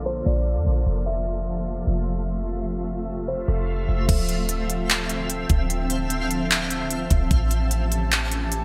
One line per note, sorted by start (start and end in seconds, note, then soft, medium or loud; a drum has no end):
0.00 0.22 A#1 loud
0.00 0.83 D3 medium
0.00 4.05 F3 medium
0.00 0.83 A#3 medium
0.00 4.05 F4 medium
0.00 0.83 A4 medium
0.00 0.84 A4 medium
0.00 0.83 D5 medium
0.06 0.25 C5 medium
0.26 0.58 A#1 loud
0.26 0.83 D5 medium
0.56 0.66 F2 loud
0.66 0.86 A#1 loud
0.86 1.83 F1 loud
0.86 4.05 C3 medium
0.86 4.05 A3 medium
0.86 4.06 A3 medium
0.86 4.06 F4 medium
0.86 4.06 E5 medium
1.06 2.43 E5 medium
1.87 3.44 F1 loud
3.28 3.47 C5 medium
3.48 3.87 F1 loud
3.48 4.05 A4 medium
3.89 4.08 F1 loud
4.08 5.46 D1 loud
4.08 7.28 D3 medium
4.08 7.28 F3 medium
4.08 7.28 C4 medium
4.08 7.28 F4 medium
4.08 7.27 E5 medium
4.08 7.28 E5 medium
4.08 8.65 A5 medium
4.08 kick loud
4.08 closed hi-hat medium
4.08 crash loud
4.29 closed hi-hat medium
4.49 closed hi-hat medium
4.70 closed hi-hat medium
4.90 clap loud
4.90 closed hi-hat medium
5.09 closed hi-hat medium
5.30 closed hi-hat medium
5.50 7.07 D1 loud
5.50 kick loud
5.50 closed hi-hat medium
5.70 closed hi-hat medium
5.90 closed hi-hat medium
6.10 closed hi-hat medium
6.31 closed hi-hat medium
6.51 clap loud
6.51 closed hi-hat medium
6.70 closed hi-hat medium
6.91 closed hi-hat medium
7.10 7.30 D1 loud
7.10 kick loud
7.10 closed hi-hat medium
7.31 8.65 A1 loud
7.31 8.65 E3 medium
7.31 8.65 A3 medium
7.31 8.65 C#4 medium
7.31 8.65 G4 medium
7.31 8.65 A4 medium
7.31 8.65 G5 medium
7.31 kick loud
7.31 closed hi-hat medium
7.51 closed hi-hat medium
7.71 closed hi-hat medium
7.92 closed hi-hat medium
8.12 clap loud
8.12 closed hi-hat medium
8.32 closed hi-hat medium
8.52 closed hi-hat medium